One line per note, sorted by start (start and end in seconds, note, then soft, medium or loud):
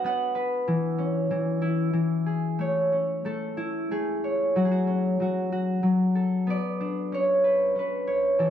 0.00 1.04 D4 medium
0.00 2.18 F#4 medium
0.00 0.11 A4 medium
0.00 0.70 D5 medium
0.04 3.15 B3 medium
0.04 1.90 F#5 medium
0.35 2.40 B4 medium
0.68 1.29 E3 medium
0.98 2.92 C#4 medium
1.31 1.92 E3 medium
1.62 3.57 E4 medium
1.93 2.65 E3 medium
2.26 2.65 G#4 medium
2.59 3.24 A3 medium
2.59 4.24 C#5 medium
2.92 4.87 C#4 soft
3.25 3.91 A3 medium
3.25 3.98 A4 medium
3.57 6.18 E4 medium
3.91 4.71 A3 medium
3.91 4.65 G#4 medium
4.24 6.15 C#5 medium
4.56 5.19 F#3 medium
4.56 4.71 F#4 medium
4.65 6.21 G#4 medium
4.71 5.21 F#4 medium
4.87 6.56 C#4 medium
5.20 5.82 F#3 medium
5.20 5.52 F#4 medium
5.52 7.96 F#4 medium
5.83 6.54 F#3 medium
6.15 8.35 A4 medium
6.47 8.50 B3 medium
6.47 7.18 D5 medium
6.80 8.13 D4 medium
7.12 7.75 C#4 medium
7.12 8.07 C#5 medium
7.44 7.78 B4 medium
7.76 8.50 C#4 medium
7.76 8.50 B4 medium
8.07 8.50 C#5 medium
8.39 8.50 E3 medium
8.39 8.50 A4 medium